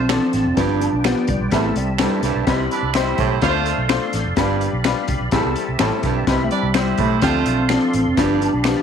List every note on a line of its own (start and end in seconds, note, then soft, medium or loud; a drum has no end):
0.00 0.18 B1 medium
0.00 0.56 C4 medium
0.00 0.60 C4 medium
0.00 1.50 F4 medium
0.00 1.50 D5 medium
0.00 0.56 A5 medium
0.09 0.15 E3 medium
0.09 0.44 C4 medium
0.09 0.44 D4 medium
0.09 0.44 A4 medium
0.09 finger snap medium
0.09 snare loud
0.09 closed hi-hat medium
0.15 0.47 F3 medium
0.33 0.44 A1 loud
0.33 snare soft
0.33 closed hi-hat medium
0.46 0.55 F1 medium
0.57 0.87 G1 medium
0.57 0.91 G2 medium
0.57 0.91 F3 medium
0.57 0.91 B3 medium
0.57 0.91 D4 medium
0.57 0.81 D4 loud
0.57 0.91 G4 medium
0.57 1.51 B4 medium
0.57 1.51 G5 medium
0.57 kick loud
0.57 snare loud
0.57 closed hi-hat medium
0.81 1.06 D4 loud
0.81 closed hi-hat medium
0.93 1.13 B1 medium
1.04 1.39 F3 medium
1.04 1.39 B3 medium
1.04 1.30 B3 medium
1.04 1.39 D4 medium
1.04 1.39 G4 medium
1.04 finger snap medium
1.04 snare loud
1.04 closed hi-hat medium
1.27 1.38 C2 medium
1.27 1.52 G3 medium
1.27 kick medium
1.27 closed hi-hat medium
1.40 1.50 B1 medium
1.51 1.72 A1 loud
1.51 1.72 E2 medium
1.51 1.86 G3 medium
1.51 1.78 A3 medium
1.51 3.40 C4 medium
1.51 1.86 C4 medium
1.51 1.86 E4 medium
1.51 3.40 G4 medium
1.51 1.86 A4 medium
1.51 3.40 E5 medium
1.51 2.46 A5 medium
1.51 kick medium
1.51 snare medium
1.51 closed hi-hat medium
1.76 2.06 C2 medium
1.76 2.21 G3 medium
1.76 closed hi-hat medium
1.98 2.19 G2 medium
1.98 2.34 G3 medium
1.98 2.06 B3 soft
1.98 2.34 E4 medium
1.98 2.34 A4 medium
1.98 finger snap medium
1.98 snare loud
1.98 closed hi-hat medium
2.06 2.37 C4 medium
2.23 2.33 C2 medium
2.23 2.42 G2 medium
2.23 snare soft
2.23 closed hi-hat medium
2.35 2.45 B1 medium
2.46 2.67 C2 loud
2.46 2.66 C3 medium
2.46 2.81 G3 medium
2.46 2.81 C4 medium
2.46 2.53 D#4 medium
2.46 2.82 B4 medium
2.46 3.41 B5 medium
2.46 kick loud
2.46 snare loud
2.46 closed hi-hat medium
2.53 2.84 E4 medium
2.70 2.90 D4 medium
2.70 2.90 B4 medium
2.70 2.90 D5 medium
2.70 closed hi-hat medium
2.83 3.12 C2 medium
2.93 3.39 G3 medium
2.93 3.29 G3 medium
2.93 3.29 C4 medium
2.93 3.01 D#4 medium
2.93 3.39 E4 medium
2.93 3.39 C5 medium
2.93 3.30 C5 medium
2.93 finger snap medium
2.93 snare loud
2.93 closed hi-hat medium
3.01 3.32 E4 medium
3.18 3.38 B1 medium
3.18 3.38 A2 medium
3.18 kick medium
3.18 closed hi-hat medium
3.41 3.72 D2 loud
3.41 3.87 A3 loud
3.41 3.77 A3 medium
3.41 3.77 D4 medium
3.41 3.87 F4 loud
3.41 3.77 F4 medium
3.41 4.36 A4 medium
3.41 3.48 B4 medium
3.41 3.87 C5 loud
3.41 5.30 D5 medium
3.41 5.30 F5 medium
3.41 4.36 C6 medium
3.41 kick medium
3.41 snare medium
3.41 closed hi-hat medium
3.49 3.80 C5 medium
3.66 closed hi-hat medium
3.78 3.98 B1 medium
3.89 4.24 A3 medium
3.89 4.23 D4 medium
3.89 4.24 F4 medium
3.89 4.24 C5 medium
3.89 finger snap medium
3.89 snare loud
3.89 closed hi-hat medium
4.13 4.23 A1 medium
4.13 snare soft
4.13 closed hi-hat medium
4.26 4.35 F1 medium
4.37 4.67 G1 medium
4.37 4.71 G2 medium
4.37 4.71 G3 medium
4.37 4.71 D4 medium
4.37 4.71 F4 medium
4.37 7.20 G4 medium
4.37 4.71 B4 medium
4.37 5.31 B5 medium
4.37 kick loud
4.37 snare loud
4.37 closed hi-hat medium
4.61 closed hi-hat medium
4.73 4.93 B1 medium
4.84 5.19 G3 medium
4.84 5.19 D4 medium
4.84 5.19 F4 medium
4.84 5.19 B4 medium
4.84 finger snap medium
4.84 snare loud
4.84 closed hi-hat medium
5.08 5.18 C2 medium
5.08 kick medium
5.08 closed hi-hat medium
5.20 5.30 B1 medium
5.31 5.42 A1 loud
5.31 5.51 E2 medium
5.31 5.66 G3 medium
5.31 7.20 C4 medium
5.31 5.67 C4 medium
5.31 5.66 E4 medium
5.31 5.38 G#4 medium
5.31 7.20 E5 medium
5.31 6.26 A5 medium
5.31 kick medium
5.31 snare medium
5.31 closed hi-hat medium
5.38 5.69 A4 loud
5.45 5.54 C2 medium
5.56 closed hi-hat medium
5.69 5.78 C2 medium
5.79 5.90 A1 medium
5.79 5.99 A2 medium
5.79 6.14 G3 medium
5.79 6.14 C4 medium
5.79 6.14 E4 medium
5.79 6.14 A4 medium
5.79 finger snap medium
5.79 snare loud
5.79 closed hi-hat medium
6.03 6.23 B1 loud
6.03 6.22 G2 medium
6.03 kick medium
6.03 snare soft
6.03 closed hi-hat medium
6.27 6.47 C2 medium
6.27 6.46 C3 medium
6.27 6.62 G3 medium
6.27 6.61 C4 medium
6.27 6.33 D#4 medium
6.27 6.62 B4 medium
6.27 7.22 B5 medium
6.27 kick loud
6.27 snare loud
6.27 closed hi-hat medium
6.33 6.64 E4 medium
6.44 6.51 A3 medium
6.51 7.01 G3 medium
6.51 6.70 D4 medium
6.51 6.70 B4 medium
6.51 6.70 D5 loud
6.51 closed hi-hat medium
6.63 6.93 C2 loud
6.74 7.09 G3 medium
6.74 7.20 G3 medium
6.74 7.09 C4 medium
6.74 7.09 E4 medium
6.74 7.20 E4 medium
6.74 7.09 C5 medium
6.74 7.20 C5 medium
6.74 finger snap medium
6.74 snare loud
6.74 closed hi-hat medium
6.98 7.18 B1 medium
6.98 7.17 A2 medium
6.98 7.24 A3 medium
6.98 kick medium
6.98 closed hi-hat medium
7.22 7.42 D2 loud
7.22 7.56 F3 medium
7.22 7.67 A3 loud
7.22 7.56 C4 medium
7.22 8.21 C4 loud
7.22 7.56 D4 medium
7.22 7.67 F4 loud
7.22 7.28 G4 medium
7.22 8.16 A4 medium
7.22 7.67 C5 loud
7.22 8.82 D5 medium
7.22 8.82 F5 medium
7.22 8.16 C6 medium
7.22 kick medium
7.22 snare medium
7.22 closed hi-hat medium
7.28 7.59 A4 medium
7.46 7.76 B1 medium
7.46 closed hi-hat medium
7.69 8.04 F3 medium
7.69 8.04 C4 medium
7.69 8.04 D4 medium
7.69 8.04 A4 medium
7.69 finger snap medium
7.69 snare loud
7.69 closed hi-hat medium
7.93 8.04 A1 loud
7.93 closed hi-hat medium
8.06 8.16 F1 medium
8.17 8.47 G1 loud
8.17 8.51 G2 medium
8.17 8.52 F3 medium
8.17 8.52 B3 medium
8.17 8.52 D4 medium
8.17 8.41 D4 loud
8.17 8.82 G4 medium
8.17 8.52 G4 medium
8.17 8.82 B5 medium
8.17 kick loud
8.17 snare loud
8.17 closed hi-hat medium
8.42 8.82 D4 medium
8.42 closed hi-hat medium
8.54 8.73 B1 medium
8.64 8.82 F3 medium
8.64 8.82 B3 medium
8.64 8.82 D4 medium
8.64 8.82 G4 medium
8.64 finger snap medium
8.64 snare loud
8.64 closed hi-hat medium